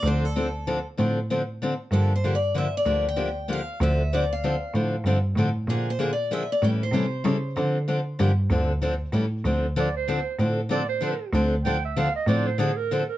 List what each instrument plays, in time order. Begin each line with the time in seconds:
0.03 cello D2, steel-string acoustic guitar D3 F3 C4 D4 A4
0.07 steel-string acoustic guitar C5
0.25 steel-string acoustic guitar A4
0.36 steel-string acoustic guitar D3 F3 C4 D4 A4
0.67 steel-string acoustic guitar D3 F3 C4 D4 A4
0.97 cello A2, steel-string acoustic guitar D3 F3 C4 D4 A4
1.30 steel-string acoustic guitar D3 F3 C4 D4 A4
1.62 steel-string acoustic guitar D3 F3 C4 D4 A4
1.91 cello G2, steel-string acoustic guitar D3 F3 A#3 D4 G4 A4
2.16 steel-string acoustic guitar C5
2.24 steel-string acoustic guitar D3 F3 A#3 D4 G4
2.35 steel-string acoustic guitar D5
2.54 steel-string acoustic guitar D3 F3 A#3 D4 G4 E5
2.77 steel-string acoustic guitar D5
2.85 cello D2, steel-string acoustic guitar D3 F3 A#3 D4 G4
3.08 steel-string acoustic guitar G5
3.16 steel-string acoustic guitar D3 F3 A#3 D4 G4
3.48 steel-string acoustic guitar D3 F3 A#3 D4 G4
3.53 steel-string acoustic guitar F5
3.80 cello D2, steel-string acoustic guitar D3 F3 C4 D4 A4 E5
4.13 steel-string acoustic guitar D3 F3 C4 D4 A4 D5
4.33 steel-string acoustic guitar F5
4.44 steel-string acoustic guitar D3 F3 C4 D4 A4
4.74 cello A2, steel-string acoustic guitar D3 F3 C4 D4 A4
5.04 cello G2, steel-string acoustic guitar D3 F3 C4 D4 A4
5.36 cello A2, steel-string acoustic guitar D3 F3 C4 D4 A4
5.67 cello A#2, steel-string acoustic guitar D3 F3 A#3 D4 G#4
5.90 steel-string acoustic guitar C5
5.99 steel-string acoustic guitar D3 F3 A#3 D4 G#4
6.13 steel-string acoustic guitar D5
6.31 steel-string acoustic guitar D3 F3 A#3 D4 G#4 E5
6.52 steel-string acoustic guitar D5
6.62 cello A2, steel-string acoustic guitar E3 G3 C#4 E4 A4 G5
6.83 steel-string acoustic guitar C5
6.92 cello C3, steel-string acoustic guitar E3 G3 C#4 E4 A4
7.24 cello C#3, steel-string acoustic guitar E3 G3 C#4 E4 A4
7.56 steel-string acoustic guitar D3 F3 C4 D4 A4, cello D3
7.88 steel-string acoustic guitar D3 F3 C4 D4 A4
8.19 cello G2, steel-string acoustic guitar D3 F3 A#3 D4 G4
8.50 cello D2, steel-string acoustic guitar D3 F3 C4 D4 A4
8.82 steel-string acoustic guitar D3 F3 C4 D4 A4
9.12 cello A2, steel-string acoustic guitar E3 G3 C#4 E4 A4
9.45 cello D2, steel-string acoustic guitar D3 F3 C4 D4 A4
9.76 steel-string acoustic guitar D3 F3 C4 D4 A4, clarinet D5
9.97 clarinet C5
10.08 steel-string acoustic guitar D3 F3 C4 D4 A4
10.39 cello A2, steel-string acoustic guitar D3 F3 C4 D4 A4
10.69 steel-string acoustic guitar D3 F3 C4 D4 A4, clarinet D5
10.89 clarinet C5
11.01 steel-string acoustic guitar D3 F3 C4 D4 A4
11.33 cello D2, steel-string acoustic guitar D3 F3 C4 D4 A4
11.65 steel-string acoustic guitar D3 F3 C4 D4 A4, clarinet G5
11.85 clarinet E5
11.96 steel-string acoustic guitar D3 F3 C4 D4 A4, clarinet F5
12.16 clarinet D#5
12.27 cello A2, steel-string acoustic guitar D3 F3 C4 D4 A4, clarinet D5
12.47 clarinet C5
12.58 steel-string acoustic guitar D3 F3 C4 D4 A4, clarinet G#4
12.77 clarinet A#4
12.91 steel-string acoustic guitar D3 F3 C4 D4 A4, clarinet A4
13.09 clarinet A#4